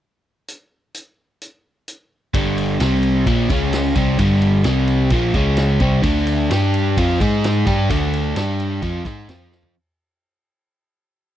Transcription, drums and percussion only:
0.48 closed hi-hat
0.94 closed hi-hat
1.42 closed hi-hat
1.88 closed hi-hat
2.34 kick, ride
2.58 ride
2.80 snare, ride
3.03 ride
3.26 kick, ride
3.50 kick, ride
3.73 snare, ride
3.95 kick, ride
4.19 kick, ride
4.42 ride
4.64 snare, ride
4.88 ride
5.10 kick, ride
5.34 kick, ride
5.57 snare, ride
5.80 kick, ride
6.03 kick, ride
6.27 ride
6.51 snare, ride
6.74 ride
6.97 kick, ride
7.20 kick, ride
7.44 snare, ride
7.67 kick, ride
7.90 kick, ride
8.14 ride
8.36 snare, ride
8.60 ride
8.82 kick, ride
9.05 kick, ride
9.29 snare, ride
9.52 snare
9.63 floor tom

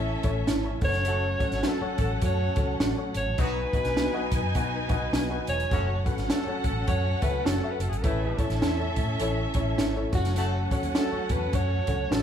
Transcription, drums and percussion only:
0.23 kick, closed hi-hat
0.47 snare, closed hi-hat
0.81 kick, open hi-hat
0.94 snare, closed hi-hat
1.05 closed hi-hat
1.40 kick, closed hi-hat
1.52 snare, closed hi-hat
1.63 snare, closed hi-hat
1.98 kick, closed hi-hat
2.22 kick, closed hi-hat
2.56 kick, closed hi-hat
2.80 snare, closed hi-hat
3.14 closed hi-hat
3.38 kick, closed hi-hat
3.73 kick, closed hi-hat
3.85 snare, closed hi-hat
3.97 snare, closed hi-hat
4.32 kick, closed hi-hat
4.55 kick, closed hi-hat
4.89 kick, closed hi-hat
5.13 snare, closed hi-hat
5.47 closed hi-hat
5.60 closed hi-hat
5.71 kick, closed hi-hat
6.06 kick, closed hi-hat
6.18 snare, closed hi-hat
6.30 snare, closed hi-hat
6.64 kick, closed hi-hat
6.88 kick, closed hi-hat
7.22 kick, closed hi-hat
7.46 snare, closed hi-hat
7.80 closed hi-hat
7.93 closed hi-hat
8.04 kick, closed hi-hat
8.38 kick, closed hi-hat
8.50 snare, closed hi-hat
8.62 snare, closed hi-hat
8.96 kick, closed hi-hat
9.20 closed hi-hat
9.54 kick, closed hi-hat
9.78 snare, closed hi-hat
10.13 kick, closed hi-hat
10.25 snare, closed hi-hat
10.36 closed hi-hat
10.71 kick, closed hi-hat
10.83 closed hi-hat
10.95 snare, closed hi-hat
11.29 kick, closed hi-hat
11.53 kick, closed hi-hat
11.87 kick, closed hi-hat
12.12 snare, closed hi-hat

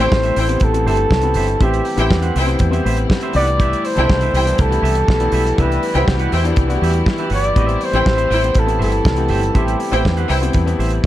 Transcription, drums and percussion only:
0.12 kick, snare
0.23 closed hi-hat
0.36 open hi-hat
0.49 closed hi-hat
0.60 kick, closed hi-hat
0.74 closed hi-hat
0.87 open hi-hat
0.97 closed hi-hat
1.11 kick, snare
1.21 closed hi-hat
1.34 open hi-hat
1.48 closed hi-hat
1.61 kick, closed hi-hat
1.74 closed hi-hat
1.85 open hi-hat
1.98 closed hi-hat
2.11 kick, snare
2.22 closed hi-hat
2.36 open hi-hat
2.49 closed hi-hat
2.59 kick, closed hi-hat
2.73 closed hi-hat
2.86 open hi-hat
2.97 closed hi-hat
3.10 kick, snare
3.21 closed hi-hat
3.33 open hi-hat
3.47 closed hi-hat
3.60 kick, closed hi-hat
3.73 closed hi-hat
3.85 open hi-hat
3.97 closed hi-hat
4.10 kick, snare
4.21 closed hi-hat
4.34 open hi-hat
4.47 closed hi-hat
4.58 kick, closed hi-hat
4.72 closed hi-hat
4.85 open hi-hat
4.95 closed hi-hat
5.08 kick, snare
5.20 closed hi-hat
5.32 open hi-hat
5.47 closed hi-hat
5.58 kick, closed hi-hat
5.72 closed hi-hat
5.83 open hi-hat
5.95 closed hi-hat
6.08 kick, snare
6.19 closed hi-hat
6.32 open hi-hat
6.45 closed hi-hat
6.56 kick, closed hi-hat
6.70 closed hi-hat
6.84 open hi-hat
6.93 closed hi-hat
7.06 kick, snare
7.18 closed hi-hat
7.30 open hi-hat
7.44 closed hi-hat
7.56 kick, closed hi-hat
7.69 closed hi-hat
7.81 open hi-hat
7.93 closed hi-hat
8.06 kick, snare
8.18 closed hi-hat
8.32 open hi-hat
8.44 closed hi-hat
8.55 kick, closed hi-hat
8.68 closed hi-hat
8.82 open hi-hat
8.92 closed hi-hat
9.05 kick, snare
9.16 closed hi-hat
9.28 open hi-hat
9.43 closed hi-hat
9.55 kick, closed hi-hat
9.68 closed hi-hat
9.80 open hi-hat
9.93 closed hi-hat
10.05 kick, snare
10.17 closed hi-hat
10.30 open hi-hat
10.43 closed hi-hat
10.53 kick, closed hi-hat
10.68 closed hi-hat
10.80 open hi-hat
10.91 closed hi-hat

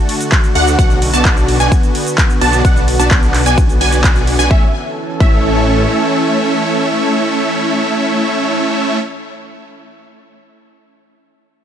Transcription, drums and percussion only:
0.09 open hi-hat, ride
0.21 closed hi-hat, cabasa
0.32 kick, clap, closed hi-hat, ride, cabasa
0.44 closed hi-hat, cabasa
0.55 open hi-hat, ride
0.67 closed hi-hat, cabasa
0.79 kick, closed hi-hat, ride, cabasa
0.90 closed hi-hat, cabasa
1.02 open hi-hat, ride
1.14 closed hi-hat, cabasa
1.25 kick, clap, closed hi-hat, ride, cabasa
1.37 closed hi-hat, cabasa
1.48 open hi-hat, ride
1.60 closed hi-hat, cabasa
1.72 kick, closed hi-hat, ride, cabasa
1.83 closed hi-hat, cabasa
1.95 open hi-hat, ride
2.07 closed hi-hat, cabasa
2.18 kick, clap, closed hi-hat, ride, cabasa
2.30 closed hi-hat, cabasa
2.41 open hi-hat, ride
2.53 closed hi-hat, cabasa
2.65 kick, closed hi-hat, ride, cabasa
2.76 closed hi-hat, cabasa
2.88 open hi-hat, ride
3.00 closed hi-hat, cabasa
3.11 kick, clap, closed hi-hat, ride, cabasa
3.23 closed hi-hat, cabasa
3.34 clap, open hi-hat, ride
3.46 closed hi-hat, cabasa
3.58 kick, closed hi-hat, ride, cabasa
3.69 closed hi-hat, cabasa
3.81 open hi-hat, ride
3.93 closed hi-hat, cabasa
4.04 kick, clap, closed hi-hat, ride, cabasa
4.16 closed hi-hat, cabasa
4.27 open hi-hat, ride
4.39 closed hi-hat, cabasa
4.51 kick
5.20 kick

